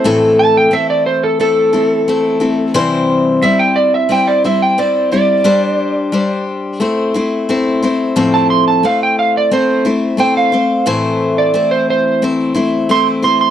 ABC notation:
X:1
M:4/4
L:1/16
Q:1/4=89
K:Am
V:1 name="Electric slide guitar"
z2 a g e d c A A8 | z4 e g d e g d e g d2 d2- | d6 z8 z2 | z a c' a f g f d c2 z2 g f3 |
z3 d2 c c2 z4 c' z c' c' |]
V:2 name="Steel-string acoustic guitar"
[A,,E,A,CEA]4 [A,CEA]4 [A,CEA]2 [A,CEA]2 [A,CEA]2 [A,CEA]2 | [C,E,G,CEc]4 [G,CEc]4 [G,CEc]2 [G,CEc]2 [G,CEc]2 [G,CEc]2 | [G,DGc]4 [G,DGc]4 [A,CEc]2 [A,CEc]2 [A,CEc]2 [A,CEc]2 | [A,,F,A,CEc]4 [A,CEc]4 [A,CEc]2 [A,CEc]2 [A,CEc]2 [A,Cc]2 |
[A,,E,A,CEc]4 [A,CEc]4 [A,CEc]2 [A,CEc]2 [A,CEc]2 [A,CEc]2 |]